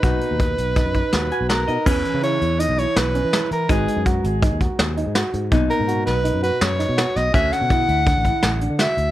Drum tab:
CC |----------|x---------|----------|----------|
HH |xxxxxxxxxx|-xxxxxxxxx|xxxxxxxxxx|xxxxxxxxxx|
SD |----o-o-o-|------o-o-|------o-o-|---o--oooo|
BD |o-o-oo----|o---------|o-o-oo----|o---------|

CC |----------|
HH |xxxxxxxxxx|
SD |-oo---o-o-|
BD |o-o-oo----|